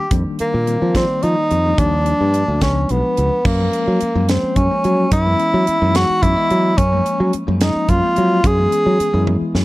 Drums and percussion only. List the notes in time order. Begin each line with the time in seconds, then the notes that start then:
0.11 kick, closed hi-hat
0.39 closed hi-hat
0.67 closed hi-hat
0.95 kick, snare, closed hi-hat
1.23 closed hi-hat
1.51 closed hi-hat
1.78 kick, closed hi-hat
2.06 closed hi-hat
2.34 closed hi-hat
2.61 kick, snare, closed hi-hat
2.89 closed hi-hat
3.17 closed hi-hat
3.45 kick, crash
3.73 closed hi-hat
4.01 closed hi-hat
4.29 snare, closed hi-hat
4.56 kick, closed hi-hat
4.84 closed hi-hat
5.11 kick, closed hi-hat
5.39 closed hi-hat
5.67 closed hi-hat
5.95 snare, closed hi-hat
6.23 kick, closed hi-hat
6.50 closed hi-hat
6.78 kick, closed hi-hat
7.06 closed hi-hat
7.33 closed hi-hat
7.61 snare, closed hi-hat
7.89 kick, closed hi-hat
8.16 closed hi-hat
8.44 kick, closed hi-hat
8.72 closed hi-hat
9.00 closed hi-hat
9.27 high tom
9.55 snare